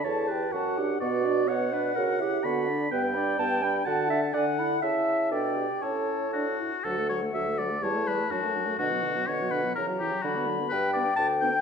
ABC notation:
X:1
M:2/4
L:1/16
Q:1/4=125
K:D
V:1 name="Flute"
a2 g2 a2 f2 | f2 d2 f2 d2 | f2 e2 f2 d2 | g2 b2 g2 b2 |
a2 f2 ^g2 b2 | a4 g4 | a6 z2 | f8 |
a4 a4 | f4 f4 | ^a4 b4 | g8 |]
V:2 name="Oboe"
a4 f4 | d4 f4- | f4 b4 | g8 |
a4 f4 | e4 d4 | c4 F4 | A2 c2 e2 d2 |
c2 B2 F4 | F4 c2 B2 | ^A2 G2 F2 z2 | B2 d2 a2 g2 |]
V:3 name="Clarinet"
c2 B2 F2 G2 | F4 c2 B2 | ^A2 G2 F2 z2 | B2 d2 a2 g2 |
f2 e2 d2 f2 | e4 A2 G2 | A6 z2 | F A F A F A F A |
G A G A D F D F | D B, D B, D B, D B, | E F E F D F D F | z2 D2 z2 D2 |]
V:4 name="French horn"
A2 G2 F2 D2 | B,2 D2 B,2 D2 | F2 E2 B,2 D2 | B,2 D2 B,2 D2 |
F2 D2 D2 E2 | E4 D4 | C4 D2 E2 | F, A, F, A, F, A, F, A, |
G, A, G, A, F, A, F, A, | D, F, D, F, D, F, D, F, | E, F, E, F, F, B, F, B, | z2 B,2 z2 B,2 |]
V:5 name="Bassoon" clef=bass
E,,4 F,,4 | B,,4 B,,4 | C,4 D,4 | G,,4 G,,4 |
D,4 D,4 | C,4 B,,4 | A,,6 z2 | D,,4 D,,4 |
E,,4 F,,4 | B,,4 B,,4 | C,4 D,4 | G,,4 D,,4 |]